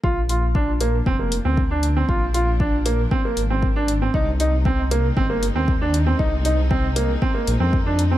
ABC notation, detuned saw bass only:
X:1
M:4/4
L:1/16
Q:1/4=117
K:Bbmix
V:1 name="Detuned saw bass" clef=bass
B,,,8 F,,,3 D,,4- D,, | B,,,8 z2 A,,,6 | C,,8 G,,,3 E,,4- E,, | C,,8 z2 B,,, F,,4- F,, |]